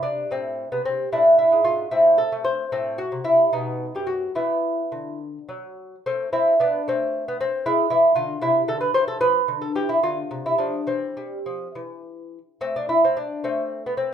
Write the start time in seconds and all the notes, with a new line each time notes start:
Already playing: C3
0.03 D4
0.31 A2 C4
0.72 C3 B3
0.85 C4
1.12 A2 D4 E4
1.38 E4
1.52 G#2
1.65 F4
1.91 A2 C4 E4
2.18 A4
2.32 A3
2.44 C5
2.72 A2 C4
2.98 F#4
3.12 C3
3.24 E4
3.53 B2 B3 D#4
3.95 F#2 G4
4.07 F#4
4.35 E3 B3 E4
4.92 D3
5.49 F#3
6.06 A3 C4
6.33 C4 E4
6.60 B3 D4
6.88 A3 C4
7.28 B3
7.41 C4
7.66 G#3 E4
7.90 E3 E4
8.15 D3 F4
8.41 C3 E4
8.68 D3 A4
8.81 B4
8.94 E3 C5
9.08 A4
9.21 F3 B4
9.48 D3
9.61 A4
9.75 E3 G4
9.89 E4
10.03 D3 F4
10.31 C3
10.46 E4
10.58 F3 D4
10.87 E3 C4
11.17 G3
11.46 F3
11.75 E3
12.61 A3 C4
12.76 D4
12.89 E4
13.04 C4
13.17 D4
13.44 A3 C4
13.86 B3
13.97 C4